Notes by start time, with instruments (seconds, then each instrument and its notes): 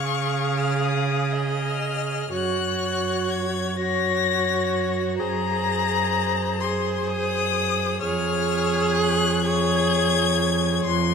Already playing: cello C#3, viola G#4, violin F5 C#6
0.57 violin F6
0.83 violin D#6
1.33 violin D#5 F6
2.32 cello F#2, viola F#4, violin C#5 F#6
3.30 violin G#6
3.77 viola F#4, violin C#5 A#6
5.17 viola G#4, violin C5 A#5
6.60 viola G#4, violin C5 C6
7.08 violin D#6
8.02 cello F2, viola G#4, violin C#5 F6
8.95 violin F#6
9.42 viola G#4, violin C#5 G#6
10.84 cello F2, violin C6